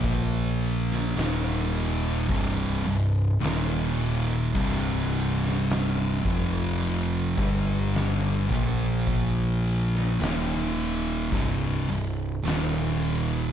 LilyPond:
<<
  \new Staff \with { instrumentName = "Distorted electric guitar" } { \clef bass \time 4/4 \key c \minor \tempo 4 = 53 <bes, f bes>4 <ees, bes, ees>4 <c, g, c>8 <c, g,>8 <ees, bes, ees>4 | <c, g, c>4. <f, c f>4 <g, d g>4 <bes, f bes>8~ | <bes, f bes>4 <ees, bes, ees>4 <c, g, c>8 <c, g,>8 <ees, bes, ees>4 | }
  \new Staff \with { instrumentName = "Distorted electric guitar" } { \clef bass \time 4/4 \key c \minor <bes, f bes>4 <ees, bes, ees>4 <c, g, c>8 <c, g,>8 <ees, bes, ees>4 | <c, g, c>4. <f, c f>4 <g, d g>4 <bes, f bes>8~ | <bes, f bes>4 <ees, bes, ees>4 <c, g, c>8 <c, g,>8 <ees, bes, ees>4 | }
  \new Staff \with { instrumentName = "Picked electric bass" } { \clef bass \time 4/4 \key c \minor bes,,4 ees,,4 c,,8 c,,8 ees,,4 | c,,4. f,,4 g,,4 bes,,8~ | bes,,4 ees,,4 c,,8 c,,8 ees,,4 | }
  \new DrumStaff \with { instrumentName = "Drums" } \drummode { \time 4/4 <hho bd>8 hho16 sn16 <hho sn>8 hho8 <hho bd>8 hho8 <hho sn>8 hho8 | <hho bd>8 hho16 sn16 <hho sn>8 <hho bd>8 hho8 <hho bd>8 <hho sn>8 <hho bd>8 | <hho bd>8 hho16 sn16 <hho sn>8 hho8 <hho bd>8 hho8 <hho sn>8 hho8 | }
>>